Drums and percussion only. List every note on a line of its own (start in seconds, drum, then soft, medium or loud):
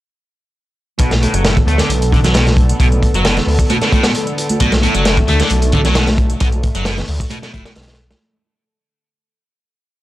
0.99 kick loud
0.99 closed hi-hat medium
1.11 snare soft
1.11 closed hi-hat soft
1.11 high conga medium
1.23 closed hi-hat medium
1.34 closed hi-hat medium
1.45 snare loud
1.45 closed hi-hat soft
1.45 closed hi-hat medium
1.57 kick medium
1.57 closed hi-hat soft
1.57 low conga medium
1.68 closed hi-hat medium
1.78 snare soft
1.78 closed hi-hat medium
1.90 closed hi-hat soft
1.90 closed hi-hat medium
2.02 closed hi-hat soft
2.12 kick medium
2.12 closed hi-hat medium
2.12 low conga medium
2.24 snare soft
2.24 closed hi-hat medium
2.24 low conga medium
2.34 snare loud
2.34 closed hi-hat medium
2.47 snare medium
2.47 closed hi-hat soft
2.47 high conga medium
2.57 kick medium
2.57 closed hi-hat medium
2.69 closed hi-hat medium
2.80 kick loud
2.80 closed hi-hat medium
2.80 closed hi-hat soft
2.92 closed hi-hat soft
2.92 high conga medium
3.02 kick medium
3.02 closed hi-hat medium
3.14 closed hi-hat medium
3.25 snare loud
3.25 closed hi-hat medium
3.37 snare soft
3.37 closed hi-hat soft
3.37 low conga medium
3.48 open hi-hat medium
3.59 kick medium
3.59 closed hi-hat medium
3.70 closed hi-hat medium
3.70 high conga medium
3.81 snare soft
3.81 closed hi-hat soft
3.92 kick medium
3.92 closed hi-hat medium
3.92 high conga medium
4.03 snare loud
4.03 closed hi-hat medium
4.15 closed hi-hat medium
4.27 closed hi-hat soft
4.38 closed hi-hat medium
4.49 closed hi-hat medium
4.49 high conga medium
4.60 kick loud
4.60 closed hi-hat medium
4.72 snare soft
4.72 closed hi-hat soft
4.72 high conga medium
4.83 closed hi-hat medium
4.95 closed hi-hat medium
5.05 snare loud
5.05 closed hi-hat soft
5.05 closed hi-hat medium
5.17 kick medium
5.17 closed hi-hat soft
5.17 low conga medium
5.28 closed hi-hat medium
5.40 snare soft
5.40 closed hi-hat medium
5.50 closed hi-hat medium
5.62 closed hi-hat soft
5.72 kick loud
5.72 closed hi-hat medium
5.72 low conga medium
5.85 snare soft
5.85 closed hi-hat medium
5.85 low conga medium
5.95 snare loud
5.95 closed hi-hat medium
6.07 snare medium
6.07 closed hi-hat soft
6.07 high conga medium
6.18 kick medium
6.18 closed hi-hat medium
6.30 closed hi-hat medium
6.40 kick loud
6.40 closed hi-hat medium
6.52 closed hi-hat soft
6.52 high conga medium
6.63 kick medium
6.63 closed hi-hat medium
6.75 closed hi-hat medium
6.85 snare loud
6.85 closed hi-hat medium
6.85 closed hi-hat soft
6.98 snare soft
6.98 closed hi-hat soft
6.98 low conga medium
7.08 open hi-hat medium
7.20 kick medium
7.20 closed hi-hat medium
7.30 closed hi-hat medium
7.30 closed hi-hat soft
7.30 high conga medium
7.43 snare soft
7.43 closed hi-hat soft
7.54 kick loud
7.54 closed hi-hat medium
7.54 high conga medium
7.66 snare loud
7.66 closed hi-hat medium
7.75 snare medium
7.75 closed hi-hat medium
7.82 snare medium
7.82 closed hi-hat medium
7.88 snare medium
7.88 closed hi-hat soft
7.88 closed hi-hat medium
7.93 snare medium
7.93 closed hi-hat medium
8.11 snare loud
8.11 closed hi-hat medium
8.11 high conga medium